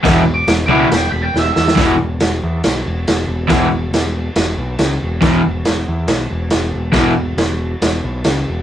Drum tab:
CC |x---x---x-------|x---x---x---x---|x---x---x---x---|x---x---x---x---|
SD |o---o---o---o-oo|o---o---o---o---|o---o---o---o---|o---o---o---o---|
BD |o---------------|o---------------|o---------------|o---------------|

CC |x---x---x---x---|
SD |o---o---o---o---|
BD |o---------------|